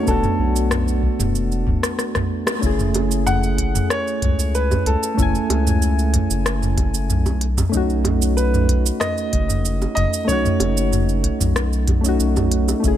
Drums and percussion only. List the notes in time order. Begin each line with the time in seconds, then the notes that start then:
0.07 kick, shaker
0.23 mid tom, shaker
0.56 shaker
0.71 cross-stick, mid tom, shaker
0.88 shaker
1.03 kick
1.19 mid tom, high bongo, shaker
1.35 shaker
1.52 shaker
1.67 kick, mid tom
1.83 cross-stick, shaker
1.99 cross-stick, shaker
2.15 kick, cross-stick, mid tom, shaker
2.47 cross-stick, high bongo, shaker
2.63 kick, shaker
2.79 mid tom, shaker
2.94 closed hi-hat, high bongo
3.11 shaker
3.26 mid tom, shaker
3.43 shaker
3.58 kick, closed hi-hat
3.75 mid tom, shaker
3.90 cross-stick, shaker
4.08 shaker
4.22 kick, closed hi-hat, mid tom
4.39 shaker
4.55 shaker
4.71 mid tom, high bongo, shaker
4.86 closed hi-hat
5.03 shaker
5.18 kick, mid tom, shaker
5.35 shaker
5.50 closed hi-hat, high bongo
5.67 mid tom, shaker
5.82 shaker
5.99 shaker
6.14 kick, closed hi-hat, mid tom
6.30 shaker
6.46 cross-stick, shaker
6.62 mid tom, shaker
6.78 kick, closed hi-hat, high bongo
6.94 shaker
7.09 mid tom, shaker
7.26 kick, high bongo, shaker
7.41 closed hi-hat
7.57 mid tom, high bongo, shaker
7.73 kick, shaker
7.90 shaker
8.05 closed hi-hat, mid tom, high bongo
8.22 shaker
8.38 shaker
8.54 mid tom, shaker
8.69 kick, closed hi-hat
8.86 shaker
9.01 cross-stick, mid tom, shaker
9.18 shaker
9.33 kick, closed hi-hat
9.49 mid tom, shaker
9.65 shaker
9.82 high bongo, shaker
9.97 closed hi-hat, mid tom
10.13 shaker
10.29 kick, shaker
10.45 mid tom, shaker
10.60 closed hi-hat, high bongo
10.77 shaker
10.92 mid tom, shaker
11.09 shaker
11.24 kick, closed hi-hat
11.41 mid tom, shaker
11.56 cross-stick, shaker
11.73 shaker
11.88 kick, closed hi-hat, mid tom, high bongo
12.05 shaker
12.20 shaker
12.36 kick, mid tom, high bongo, shaker
12.51 closed hi-hat
12.68 high bongo, shaker
12.84 kick, shaker